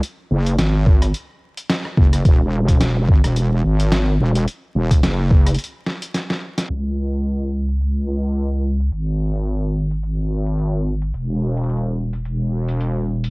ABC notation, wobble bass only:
X:1
M:4/4
L:1/16
Q:"Swing 16ths" 1/4=108
K:E
V:1 name="Wobble bass" clef=bass
z2 F,,,2 G,,,4 z6 F,,,2 | E,,,6 G,,, E,,,3 G,,,4 E,,,2 | z2 E,,,2 F,,,4 z8 | C,,16 |
G,,,16 | E,,,16 |]